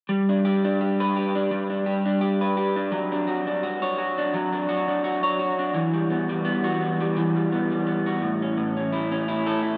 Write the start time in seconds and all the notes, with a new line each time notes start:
0.09 G3
0.29 D4
0.45 G4
0.65 D4
0.81 G4
1.00 B4
1.16 G4
1.35 D4
1.51 G3
1.70 D4
1.86 G4
2.06 D4
2.21 G4
2.41 B4
2.57 G4
2.76 D4
2.92 F#3
3.12 D4
3.27 F#4
3.47 D4
3.63 F#4
3.82 C#5
3.98 F#4
4.18 D4
4.34 F#3
4.53 D4
4.69 F#4
4.88 D4
5.04 F#4
5.23 C#5
5.39 F#4
5.59 D4
5.74 E3
5.94 G3
6.10 B3
6.29 G3
6.45 B3
6.64 F#4
6.81 B3
7.00 G3
7.16 E3
7.36 G3
7.52 B3
7.72 G3
7.87 B3
8.06 F#4
8.22 A2
8.42 C#4
8.57 A2
8.77 C#4
8.92 E4
9.12 C#4
9.28 E4
9.46 A4
9.63 E4